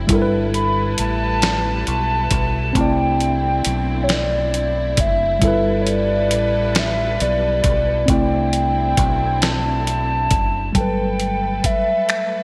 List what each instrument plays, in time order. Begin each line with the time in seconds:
Already playing: string section E4
0.07 fingered electric bass G1, tine electric piano G3 E4, string section G3 A4 B4, kick, closed hi-hat
0.13 tine electric piano A4 A#4
0.22 tine electric piano B4
0.54 soft synth lead B5, closed hi-hat
0.98 fingered electric bass A1, soft synth lead A5, closed hi-hat
1.42 snare, closed hi-hat
1.87 fingered electric bass B1, closed hi-hat
2.31 fingered electric bass B1, kick, closed hi-hat
2.73 fingered electric bass C2, string section A3 C4 D4 E4, tine electric piano A3 C4, kick, closed hi-hat
2.77 tine electric piano E4 D5, soft synth lead G5
3.20 closed hi-hat
3.65 fingered electric bass B1, closed hi-hat
4.03 soft synth lead C#5
4.09 soft synth lead D5, snare, closed hi-hat
4.54 closed hi-hat
4.97 fingered electric bass F#1, soft synth lead E5, kick, closed hi-hat
5.39 fingered electric bass G1, tine electric piano G3 E4, string section G3 A4 B4, kick, closed hi-hat
5.44 tine electric piano A4 B4, soft synth lead E5
5.81 soft synth lead C#5
5.87 soft synth lead D5, closed hi-hat
6.31 fingered electric bass A1, closed hi-hat
6.75 soft synth lead E5, snare, closed hi-hat
7.20 fingered electric bass B1, soft synth lead D5, closed hi-hat
7.64 fingered electric bass B1, kick, closed hi-hat
8.06 fingered electric bass C2, string section A3 C4 D4 E4, tine electric piano A3 C4, kick, closed hi-hat
8.10 tine electric piano E4 D5, soft synth lead G5
8.53 closed hi-hat
8.97 fingered electric bass B1, kick, closed hi-hat
9.42 soft synth lead A5, snare, closed hi-hat
9.87 closed hi-hat
10.31 fingered electric bass F#1, kick, closed hi-hat
10.73 fingered electric bass G1, tine electric piano F#3 G3, string section A3 A4 B4, soft synth lead G5, kick, closed hi-hat
10.78 tine electric piano A4 B4
11.20 closed hi-hat
11.64 soft synth lead E5, kick, closed hi-hat
12.09 finger snap, closed hi-hat